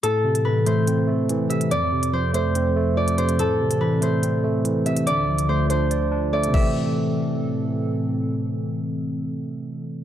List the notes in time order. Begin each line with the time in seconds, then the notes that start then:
0.03 A2 E3 C4 A4, closed hi-hat
0.24 C3
0.35 closed hi-hat
0.45 E3 B4
0.66 A3 C5, closed hi-hat
0.87 C4, closed hi-hat
1.07 A3
1.29 E3, closed hi-hat
1.50 C3 E5, closed hi-hat
1.61 closed hi-hat
1.71 F2 F3 C4 D5, closed hi-hat
1.92 C3
2.03 closed hi-hat
2.13 F3 C5
2.34 A3 C5, closed hi-hat
2.55 C4, closed hi-hat
2.76 A3
2.97 F3 D5
3.08 closed hi-hat
3.18 C3 C5, closed hi-hat
3.29 closed hi-hat
3.39 A2 E3 A4, closed hi-hat
3.60 C3
3.71 closed hi-hat
3.81 E3 B4
4.01 A3 C5, closed hi-hat
4.23 C4, closed hi-hat
4.44 A3
4.64 E3, closed hi-hat
4.86 C3 E5, closed hi-hat
4.97 closed hi-hat
5.07 D2 D3 F4 D5, closed hi-hat
5.28 F3
5.38 closed hi-hat
5.49 A3 C5
5.70 D4 C5, closed hi-hat
5.91 D5, closed hi-hat
6.12 D4
6.33 A3 D5
6.43 closed hi-hat
6.48 C3
6.52 A2 E3 A3 C4 A4 E5, kick, crash
6.60 C4